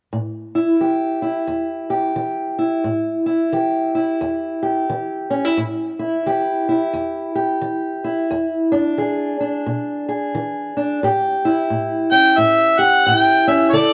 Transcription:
0.12 steel-string acoustic guitar A2
0.55 steel-string acoustic guitar E4
0.80 steel-string acoustic guitar E3 G4
1.22 steel-string acoustic guitar E4
1.47 steel-string acoustic guitar E2
1.90 steel-string acoustic guitar G4
2.16 steel-string acoustic guitar E3
2.59 steel-string acoustic guitar E4
2.84 steel-string acoustic guitar A2
3.26 steel-string acoustic guitar E4
3.53 steel-string acoustic guitar E3 G4
3.95 steel-string acoustic guitar E4
4.21 steel-string acoustic guitar E2
4.63 steel-string acoustic guitar G4
4.90 steel-string acoustic guitar E3
5.30 steel-string acoustic guitar C#4
5.45 steel-string acoustic guitar E4
5.57 steel-string acoustic guitar A2
5.99 steel-string acoustic guitar E4
6.26 steel-string acoustic guitar E3 G4
6.69 steel-string acoustic guitar E4
6.93 steel-string acoustic guitar E2
7.35 steel-string acoustic guitar G4
7.62 steel-string acoustic guitar E3
8.04 steel-string acoustic guitar E4
8.31 steel-string acoustic guitar E2
8.72 steel-string acoustic guitar D4
8.98 steel-string acoustic guitar E3 G#4
9.40 steel-string acoustic guitar D4
9.66 steel-string acoustic guitar B2
10.09 steel-string acoustic guitar G#4
10.35 steel-string acoustic guitar E3
10.77 steel-string acoustic guitar D4
11.03 steel-string acoustic guitar A2 G4
11.45 steel-string acoustic guitar E4
11.70 steel-string acoustic guitar A2
12.11 steel-string acoustic guitar C#4, harmonica G5
12.38 steel-string acoustic guitar A2, harmonica E5
12.79 steel-string acoustic guitar G4, harmonica F#5
13.06 steel-string acoustic guitar A2 E4, harmonica F#5
13.18 harmonica G5
13.47 steel-string acoustic guitar C#4, harmonica E5
13.70 steel-string acoustic guitar D3, harmonica C#5 D5
13.74 steel-string acoustic guitar A4

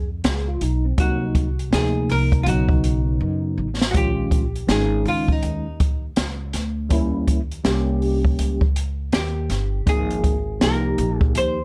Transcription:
Already playing: upright bass F2
0.24 upright bass C#2, tine electric piano G#4, snare, closed hi-hat
0.48 tine electric piano F4
0.61 upright bass B1, tine electric piano D#4, closed hi-hat
0.85 tine electric piano C4
0.97 upright bass C2, tine electric piano C3 F#3 A#3 D#4, hollow-body jazz guitar F#4, kick, closed hi-hat
1.35 kick, closed hi-hat
1.59 closed hi-hat
1.71 upright bass D2, tine electric piano C3 F3 A#3 D#4, hollow-body jazz guitar G#4, snare, closed hi-hat
2.09 upright bass C2, hollow-body jazz guitar A#4, open hi-hat
2.32 kick, closed hi-hat
2.43 upright bass B1, tine electric piano C#3 F#3 B3, hollow-body jazz guitar F4, closed hi-hat
2.48 tine electric piano D#4, hollow-body jazz guitar F#4
2.69 kick
2.84 closed hi-hat
3.21 upright bass F#2
3.58 upright bass A1
3.81 snare
3.91 upright bass A#1, tine electric piano D#3 G#3, hollow-body jazz guitar F#4, kick, closed hi-hat
3.95 tine electric piano C#4 F4, hollow-body jazz guitar G4
4.31 kick, closed hi-hat
4.56 closed hi-hat
4.67 upright bass G#1, tine electric piano D#3 G#3 C#4 D#4, hollow-body jazz guitar G#4, snare, closed hi-hat
5.05 upright bass C#2, hollow-body jazz guitar F4, open hi-hat
5.28 hollow-body jazz guitar D#4, kick
5.43 upright bass D#2, closed hi-hat
5.80 kick, closed hi-hat
6.16 upright bass C#2, snare, closed hi-hat
6.53 upright bass D2, snare, closed hi-hat
6.89 upright bass D#2, tine electric piano G3 A#3 C#4 E4, kick, closed hi-hat
7.27 kick, closed hi-hat
7.51 closed hi-hat
7.64 upright bass C2, tine electric piano G3 A#3 C#4 G4, snare, closed hi-hat
8.02 open hi-hat
8.25 kick
8.39 upright bass C#2, closed hi-hat
8.61 kick
8.76 closed hi-hat
9.12 upright bass D#2, hollow-body jazz guitar G4, snare, closed hi-hat
9.50 upright bass G1, snare, closed hi-hat
9.86 upright bass G#1, tine electric piano F3 A#3 D#4 G#4, hollow-body jazz guitar G#4, kick, closed hi-hat
10.11 closed hi-hat
10.24 kick, closed hi-hat
10.60 upright bass C2, tine electric piano F3 A#3 D#4 G4, hollow-body jazz guitar A#4, snare, closed hi-hat
10.98 upright bass A#1, closed hi-hat
11.18 hollow-body jazz guitar G#4, kick
11.35 upright bass D#2, hollow-body jazz guitar C5, closed hi-hat

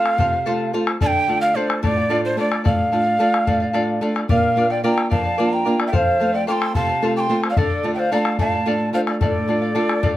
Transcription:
Already playing: nylon-string guitar A3 C4 F4, charango A4 C5 F5, quena F5
0.06 bombo rim
0.18 nylon-string guitar C3, charango A4 C5 F5, bombo low
0.33 charango C5 F5
0.46 nylon-string guitar A3 C4 F4, charango A4 C5 F5
0.73 nylon-string guitar A3 C4 F4, charango A4 C5 F5
0.87 charango C5 F5, bombo rim
1.01 nylon-string guitar D3, charango A4 D5 F5, quena A5, bombo low
1.07 quena G5
1.28 nylon-string guitar A3 D4 F4, charango A4 D5 F5
1.41 charango D5 F5, quena F5, bombo rim
1.55 nylon-string guitar A3 D4 F4, charango A4 D5 F5, quena C5
1.70 bombo rim
1.83 nylon-string guitar A2, charango A4 D5 F5, quena D5, bombo low
1.97 charango D5 F5
2.10 nylon-string guitar A3 D4 F4, charango A4 D5 F5
2.25 quena C5
2.37 nylon-string guitar A3 D4 F4, charango A4 D5 F5, quena D5
2.51 charango D5 F5, bombo rim
2.64 nylon-string guitar A2, charango A4 D5 F5, quena F5, bombo rim, bombo low
2.92 nylon-string guitar A3 D4 F4, charango A4 D5 F5, bombo rim
3.06 charango D5 F5
3.19 nylon-string guitar A3 D4 F4, charango A4 D5 F5
3.34 bombo rim
3.47 nylon-string guitar A2, charango A4 D5 F5, bombo low
3.60 charango D5 F5
3.73 nylon-string guitar A3 D4 F4, charango A4 D5 F5, bombo rim
4.01 nylon-string guitar A3 D4 F4, charango A4 D5 F5
4.15 charango D5 F5, bombo rim
4.29 nylon-string guitar A#2, pan flute A#4, charango A#4 D5 F5, quena F5, bombo low
4.56 nylon-string guitar A#3 D4 F4, charango A#4 D5 F5
4.70 pan flute D5, charango D5 F5, quena G5, bombo rim
4.84 nylon-string guitar A#3 D4 F4, charango A#4 D5 F5, pan flute G5, quena A#5
4.98 bombo rim
5.10 nylon-string guitar F2, charango A#4 D5 F5, pan flute F5, quena A5, bombo low
5.24 charango D5 F5
5.38 nylon-string guitar A#3 D4 F4, charango A#4 D5 F5
5.53 pan flute G5, quena A#5
5.65 nylon-string guitar A#3 D4 F4, charango A#4 D5 F5
5.79 charango D5 F5, bombo rim
5.86 pan flute E5, quena G5
5.92 nylon-string guitar F2, charango A4 C5 F5, pan flute C5, quena G5, bombo low
5.97 quena F5
6.19 nylon-string guitar A3 C4 F4, charango A4 C5 F5
6.33 charango C5 F5, pan flute D5, quena G5, bombo rim
6.47 nylon-string guitar A3 C4 F4, charango A4 C5 F5, pan flute G5, quena D6
6.52 quena C6
6.62 bombo rim
6.75 nylon-string guitar C3, charango A4 C5 F5, pan flute F5, quena A5, bombo low
6.88 charango C5 F5
7.02 nylon-string guitar A3 C4 F4, charango A4 C5 F5
7.16 pan flute G5, quena D6
7.20 quena C6
7.29 nylon-string guitar A3 C4 F4, charango A4 C5 F5
7.43 charango C5 F5, bombo rim
7.50 pan flute D5, quena F5
7.57 nylon-string guitar D3, charango A4 D5 F5, pan flute A4, quena D5, bombo low
7.83 nylon-string guitar A3 D4 F4, charango A4 D5 F5
7.94 pan flute C5 E5, charango F5, quena G5, bombo rim
7.99 charango D5, quena F5
8.12 nylon-string guitar A3 D4 F4, charango A4 D5 F5, pan flute F5, quena A#5
8.18 quena A5
8.25 bombo rim
8.38 nylon-string guitar A2, charango A4 D5 F5, pan flute F5, quena A5, bombo low
8.52 charango D5 F5
8.66 nylon-string guitar A3 D4 F4, charango A4 D5 F5
8.93 nylon-string guitar A3 D4 F4, charango A4 D5 F5, pan flute C5, quena F5
9.07 charango D5 F5, bombo rim
9.21 nylon-string guitar A2, charango A4 D5 F5, pan flute A4, quena E5, bombo low
9.26 quena D5
9.48 nylon-string guitar A3 D4 F4, charango A4 D5 F5, bombo rim
9.62 charango D5 F5
9.75 nylon-string guitar A3 D4 F4, charango A4 D5 F5, bombo rim
9.89 bombo rim
10.03 nylon-string guitar A2, charango A4 D5 F5, bombo rim, bombo low

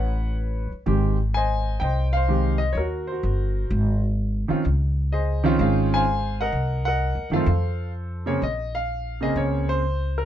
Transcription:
Already playing: upright bass A1, grand piano B4 C#5 F#5
0.72 muted upright bass stroke
0.86 upright bass G#1, grand piano D#3 G#3 C4 G4
1.34 grand piano C5 D#5 G#5
1.80 upright bass C2, grand piano D#5 G5
1.84 grand piano C5
2.13 grand piano F5
2.17 grand piano C5
2.28 grand piano D#3 G#3 C4 G4
2.58 grand piano D#5
2.73 upright bass D#2, grand piano C#5
2.77 grand piano F#4 A#4
3.07 grand piano C5
3.12 grand piano F#4
3.23 upright bass G1
3.70 upright bass G#1
4.48 grand piano D#3 C4 C#4 F4, muted upright bass stroke
4.65 upright bass C#2
5.12 grand piano G#4 C5 D#5
5.44 grand piano D#3 C4 C#4 F4
5.59 upright bass G#1, grand piano G#4 C5 F5
5.94 grand piano C5 F5 G#5
6.41 grand piano A#4 D#5 F#5
6.52 upright bass C2
6.85 grand piano A#4 D#5 F#5
7.15 upright bass D#2
7.30 upright bass F#2, grand piano D#3 A3 C4 F4 F5
7.36 grand piano A4 C5
7.46 upright bass F2
8.26 grand piano C#3 A#3 C4 G#4 C#5
8.42 upright bass A#1, grand piano D#5
8.75 grand piano F5
9.21 grand piano C#3 A#3 C4 G#4 D#5
9.36 upright bass C#2, grand piano C#5
9.69 grand piano C5
10.18 grand piano A#4

